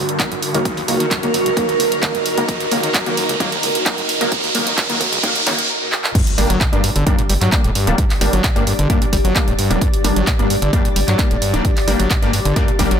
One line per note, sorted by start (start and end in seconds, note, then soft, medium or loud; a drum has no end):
0.00 5.69 G2 medium
0.00 5.69 D3 medium
0.00 5.69 F#4 medium
0.00 5.69 A#4 medium
0.00 5.69 D#5 medium
0.00 5.69 A#5 medium
0.00 riser medium
0.09 closed hi-hat soft
0.19 0.23 D#2 loud
0.19 0.28 D#3 medium
0.19 0.28 F#3 medium
0.19 0.28 A#3 medium
0.19 kick loud
0.19 clap loud
0.19 closed hi-hat medium
0.31 0.35 F#2 loud
0.31 closed hi-hat medium
0.43 open hi-hat loud
0.54 0.60 C#2 loud
0.54 0.62 D#3 medium
0.54 0.62 F#3 medium
0.54 0.62 A#3 medium
0.54 closed hi-hat soft
0.65 0.75 D#2 medium
0.65 kick loud
0.65 closed hi-hat medium
0.77 0.83 D#2 loud
0.77 open hi-hat medium
0.88 0.98 C#2 loud
0.88 1.02 D#3 medium
0.88 1.02 F#3 medium
0.88 1.02 A#3 medium
0.88 open hi-hat loud
1.00 1.06 D#3 medium
1.00 closed hi-hat medium
1.11 1.21 F#2 loud
1.11 kick loud
1.11 clap loud
1.11 closed hi-hat medium
1.23 1.29 C#2 loud
1.23 1.31 D#3 medium
1.23 1.31 F#3 medium
1.23 1.31 A#3 loud
1.23 closed hi-hat medium
1.34 1.40 F#2 medium
1.34 open hi-hat loud
1.46 1.52 C#2 loud
1.46 closed hi-hat soft
1.57 1.63 F2 loud
1.57 1.66 D#3 medium
1.57 1.66 F#3 medium
1.57 1.66 A#3 loud
1.57 kick loud
1.57 closed hi-hat medium
1.69 1.75 D#2 loud
1.69 closed hi-hat soft
1.79 1.86 C#2 medium
1.79 open hi-hat loud
1.92 closed hi-hat soft
2.02 2.07 D#2 loud
2.02 2.11 D#3 medium
2.02 2.11 F#3 medium
2.02 2.11 A#3 medium
2.02 kick loud
2.02 clap loud
2.02 closed hi-hat medium
2.14 2.18 F#2 loud
2.14 closed hi-hat soft
2.26 open hi-hat loud
2.37 2.43 C#2 loud
2.37 2.46 D#3 medium
2.37 2.46 F#3 medium
2.37 2.46 A#3 medium
2.37 closed hi-hat medium
2.48 2.58 D#2 medium
2.48 kick loud
2.48 closed hi-hat medium
2.60 2.66 D#2 loud
2.60 closed hi-hat medium
2.71 2.81 C#2 loud
2.71 2.85 D#3 medium
2.71 2.85 F#3 medium
2.71 2.85 A#3 medium
2.71 open hi-hat loud
2.83 2.89 D#3 loud
2.83 closed hi-hat medium
2.94 3.04 F#2 loud
2.94 kick loud
2.94 clap loud
2.94 closed hi-hat medium
3.06 3.12 C#2 loud
3.06 3.14 D#3 medium
3.06 3.14 F#3 medium
3.06 3.14 A#3 loud
3.06 closed hi-hat medium
3.17 3.24 F#2 medium
3.17 open hi-hat loud
3.29 3.35 C#2 loud
3.29 closed hi-hat soft
3.40 3.47 F2 loud
3.40 3.49 D#3 medium
3.40 3.49 F#3 medium
3.40 3.49 A#3 loud
3.40 kick loud
3.40 closed hi-hat medium
3.52 3.58 D#2 loud
3.52 closed hi-hat medium
3.63 3.70 C#2 medium
3.63 open hi-hat loud
3.75 closed hi-hat medium
3.86 3.90 D#2 loud
3.86 3.95 D#3 medium
3.86 3.95 F#3 medium
3.86 3.95 A#3 medium
3.86 kick loud
3.86 clap loud
3.86 closed hi-hat medium
3.98 4.01 F#2 loud
3.98 closed hi-hat medium
4.09 open hi-hat loud
4.21 4.27 C#2 loud
4.21 4.29 D#3 medium
4.21 4.29 F#3 medium
4.21 4.29 A#3 medium
4.21 closed hi-hat medium
4.32 4.42 D#2 medium
4.32 kick loud
4.32 closed hi-hat medium
4.44 4.50 D#2 loud
4.44 open hi-hat medium
4.55 4.65 C#2 loud
4.55 4.69 D#3 medium
4.55 4.69 F#3 medium
4.55 4.69 A#3 medium
4.55 open hi-hat loud
4.67 4.73 D#3 loud
4.67 closed hi-hat medium
4.78 4.87 F#2 loud
4.78 kick loud
4.78 clap loud
4.78 closed hi-hat medium
4.89 4.96 C#2 loud
4.89 4.98 D#3 medium
4.89 4.98 F#3 medium
4.89 4.98 A#3 loud
4.89 closed hi-hat medium
5.01 5.07 F#2 medium
5.01 kick medium
5.01 open hi-hat loud
5.12 5.18 C#2 loud
5.12 closed hi-hat medium
5.23 5.30 F2 loud
5.23 5.32 D#3 medium
5.23 5.32 F#3 medium
5.23 5.32 A#3 loud
5.23 kick loud
5.23 closed hi-hat medium
5.35 5.41 D#2 loud
5.35 closed hi-hat medium
5.46 5.53 C#3 loud
5.46 5.55 D#3 medium
5.46 5.55 F#3 medium
5.46 5.55 A#3 loud
5.46 clap medium
5.46 open hi-hat loud
5.59 closed hi-hat medium
5.92 clap medium
6.04 clap loud
6.15 6.22 G2 loud
6.15 13.00 G4 medium
6.15 kick loud
6.15 closed hi-hat medium
6.15 crash loud
6.15 impact medium
6.27 closed hi-hat medium
6.38 6.45 G1 medium
6.38 6.52 G3 medium
6.38 6.42 G3 loud
6.38 6.52 A#3 medium
6.38 6.52 D4 medium
6.38 13.00 D5 medium
6.38 open hi-hat loud
6.50 6.57 G1 medium
6.50 6.59 F#3 loud
6.50 closed hi-hat medium
6.61 6.67 A#2 medium
6.61 kick loud
6.61 clap loud
6.61 closed hi-hat medium
6.73 6.80 G1 medium
6.73 6.82 G2 medium
6.73 6.81 G3 medium
6.73 6.81 A#3 medium
6.73 6.81 D4 loud
6.73 closed hi-hat medium
6.84 6.90 G2 loud
6.84 open hi-hat loud
6.96 7.02 G1 medium
6.96 7.05 D3 loud
6.96 closed hi-hat medium
7.06 7.16 F#2 medium
7.06 7.15 G3 medium
7.06 7.15 A#3 medium
7.06 7.15 D4 loud
7.06 kick loud
7.06 closed hi-hat medium
7.19 7.22 A#2 medium
7.19 closed hi-hat medium
7.29 7.37 G1 loud
7.29 7.33 G3 loud
7.29 open hi-hat loud
7.41 7.48 G2 medium
7.41 7.50 F#3 loud
7.41 clap soft
7.41 closed hi-hat medium
7.52 7.61 G3 medium
7.52 7.61 A#3 medium
7.52 7.61 D4 medium
7.52 kick loud
7.52 clap loud
7.52 closed hi-hat medium
7.64 7.71 D1 medium
7.64 7.70 A2 loud
7.64 closed hi-hat medium
7.75 7.89 G2 medium
7.75 open hi-hat loud
7.87 7.94 D1 medium
7.87 7.95 G3 medium
7.87 7.96 G3 loud
7.87 7.95 A#3 medium
7.87 7.95 D4 medium
7.87 closed hi-hat medium
7.98 8.05 G2 loud
7.98 kick loud
7.98 closed hi-hat medium
8.10 clap soft
8.10 open hi-hat medium
8.21 8.28 G1 medium
8.21 8.35 G3 medium
8.21 8.25 G3 loud
8.21 8.35 A#3 medium
8.21 8.35 D4 medium
8.21 open hi-hat loud
8.33 8.40 G1 medium
8.33 8.42 F#3 loud
8.33 closed hi-hat medium
8.44 8.51 A#2 medium
8.44 kick loud
8.44 clap loud
8.44 closed hi-hat medium
8.56 8.63 G1 medium
8.56 8.65 G2 medium
8.56 8.64 G3 medium
8.56 8.64 A#3 medium
8.56 8.64 D4 loud
8.56 closed hi-hat medium
8.67 8.73 G2 loud
8.67 open hi-hat loud
8.79 8.86 G1 medium
8.79 8.88 D3 loud
8.79 closed hi-hat medium
8.90 9.00 F#2 medium
8.90 8.98 G3 medium
8.90 8.98 A#3 medium
8.90 8.98 D4 loud
8.90 kick loud
8.90 closed hi-hat medium
9.02 9.05 A#2 medium
9.02 closed hi-hat medium
9.13 9.20 G1 medium
9.13 9.17 G3 loud
9.13 kick medium
9.13 open hi-hat loud
9.24 9.31 G1 medium
9.24 9.34 F#3 loud
9.24 closed hi-hat medium
9.36 9.44 G3 medium
9.36 9.44 A#3 medium
9.36 9.44 D4 medium
9.36 kick loud
9.36 clap loud
9.36 closed hi-hat medium
9.47 9.54 D1 medium
9.47 9.54 A2 loud
9.47 closed hi-hat medium
9.58 9.72 G2 medium
9.58 open hi-hat loud
9.70 9.77 D1 medium
9.70 9.78 G3 medium
9.70 9.79 G3 loud
9.70 9.78 A#3 medium
9.70 9.78 D4 medium
9.70 closed hi-hat medium
9.81 9.88 G2 loud
9.81 kick loud
9.81 closed hi-hat medium
9.94 closed hi-hat medium
10.04 10.12 G1 loud
10.04 10.18 G3 medium
10.04 10.08 G3 loud
10.04 10.18 A#3 medium
10.04 10.18 D4 medium
10.04 open hi-hat loud
10.16 10.23 G1 medium
10.16 10.25 F#3 loud
10.16 closed hi-hat medium
10.27 10.34 A#2 medium
10.27 kick loud
10.27 clap loud
10.27 closed hi-hat medium
10.39 10.46 G1 medium
10.39 10.48 G2 medium
10.39 10.47 G3 medium
10.39 10.47 A#3 medium
10.39 10.47 D4 loud
10.39 closed hi-hat medium
10.50 10.57 G2 loud
10.50 open hi-hat loud
10.62 10.69 G1 medium
10.62 10.71 D3 loud
10.62 closed hi-hat medium
10.73 10.83 F#2 medium
10.73 10.82 G3 medium
10.73 10.82 A#3 medium
10.73 10.82 D4 loud
10.73 kick loud
10.73 closed hi-hat medium
10.85 10.89 A#2 medium
10.85 closed hi-hat medium
10.96 11.03 G1 medium
10.96 11.00 G3 loud
10.96 open hi-hat loud
11.08 11.15 G2 medium
11.08 11.17 F#3 loud
11.08 clap soft
11.08 closed hi-hat medium
11.19 11.28 G3 medium
11.19 11.28 A#3 medium
11.19 11.28 D4 medium
11.19 kick loud
11.19 clap loud
11.19 closed hi-hat medium
11.31 11.38 D1 medium
11.31 11.37 A2 loud
11.31 closed hi-hat medium
11.42 11.55 G2 medium
11.42 open hi-hat loud
11.54 11.60 D1 medium
11.54 11.62 G3 medium
11.54 11.63 G3 loud
11.54 11.62 A#3 medium
11.54 11.62 D4 medium
11.54 closed hi-hat medium
11.65 11.71 G2 loud
11.65 kick loud
11.65 closed hi-hat medium
11.77 clap soft
11.77 open hi-hat medium
11.87 11.95 G1 medium
11.87 12.01 G3 medium
11.87 11.91 G3 loud
11.87 12.01 A#3 medium
11.87 12.01 D4 medium
11.87 open hi-hat loud
11.99 12.06 G1 medium
11.99 12.08 F#3 loud
11.99 closed hi-hat medium
12.10 12.17 A#2 medium
12.10 kick loud
12.10 clap loud
12.10 closed hi-hat medium
12.22 12.29 G1 medium
12.22 12.31 G2 medium
12.22 12.30 G3 medium
12.22 12.30 A#3 medium
12.22 12.30 D4 loud
12.22 closed hi-hat medium
12.33 12.40 G2 loud
12.33 open hi-hat loud
12.45 12.52 G1 medium
12.45 12.54 D3 loud
12.45 closed hi-hat soft
12.56 12.66 F#2 medium
12.56 12.65 G3 medium
12.56 12.65 A#3 medium
12.56 12.65 D4 loud
12.56 kick loud
12.56 closed hi-hat medium
12.68 12.72 A#2 medium
12.68 closed hi-hat medium
12.79 12.87 G1 loud
12.79 12.83 G3 loud
12.79 12.88 G3 medium
12.79 12.88 A#3 medium
12.79 12.88 D4 loud
12.79 kick medium
12.79 open hi-hat loud
12.91 12.98 G1 medium
12.91 13.00 F#3 loud
12.91 closed hi-hat soft